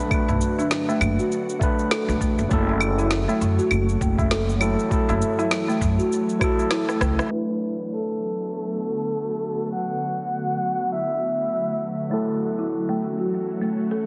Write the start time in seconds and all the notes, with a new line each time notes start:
Already playing: D3 F#3 A3 D4 F#4 B4
0.10 A3 D4 C#5, kick, cabasa, claves
0.14 B4
0.28 B1, tabla na, tabla tin, tabla ge, cabasa
0.41 cabasa
0.59 D4, tabla na, cabasa
0.71 snare, cabasa
0.89 A3, tabla na, cabasa
1.01 F#1, tabla tin, cabasa, claves
1.19 F#4, tabla na, cabasa
1.32 cabasa
1.49 cabasa
1.59 A3 D4, kick, cabasa
1.63 B4
1.79 cabasa
1.91 A4, snare, cabasa, claves
2.08 D2, cabasa
2.21 E2 A3, kick, cabasa
2.38 F#1, tabla tin, cabasa
2.49 F#1 E3 F#3 A3 E4, kick, cabasa
2.53 A4
2.69 tabla na, tabla tin
2.81 cabasa, claves
2.98 E4, tabla na, cabasa
3.11 snare, cabasa
3.28 A3, tabla na, cabasa
3.41 F#2, tabla tin, cabasa
3.59 F#4, cabasa
3.71 F#1, cabasa, claves
3.89 cabasa
4.01 F#1 A3, kick, cabasa
4.18 kick, tabla na, cabasa
4.31 A4, snare, cabasa
4.49 cabasa
4.60 F#3 A3 E4 A4, cabasa, claves
4.79 cabasa
4.89 F#3 A3 E4 A4, kick, cabasa
5.08 F#1, tabla na, tabla tin, tabla ge, cabasa
5.22 cabasa
5.39 E4, tabla na, cabasa
5.51 snare, cabasa, claves
5.68 A3, tabla na, cabasa
5.81 F#2, kick, tabla tin, cabasa
5.98 F#4, tabla na, cabasa
6.12 cabasa
6.29 cabasa
6.40 F#3 E4 F#4, kick, cross-stick, cabasa, claves
6.44 A4
6.59 tabla na, cabasa
6.71 E4, cross-stick, snare, cabasa
6.89 A3, cross-stick, cabasa
7.01 C#2 A3, kick, cross-stick, cabasa
7.19 cross-stick, tabla tin, cabasa
7.30 D3 F#3 A3 B3 D4 F#4 B4
7.92 A4
9.41 cabasa
9.72 F#5
10.02 cabasa
10.92 E5
11.22 cabasa
11.52 cabasa
11.82 cabasa
11.99 cabasa
12.10 E3 F#3 A3 C#4 E4 F#4 A4, cabasa
12.42 cabasa
12.59 E4, cabasa
12.72 cabasa
12.89 A3, cabasa
13.02 cabasa
13.19 F#4, cabasa
13.32 cabasa
13.50 cabasa
13.61 A3, cabasa
13.80 cabasa
13.91 A4, cabasa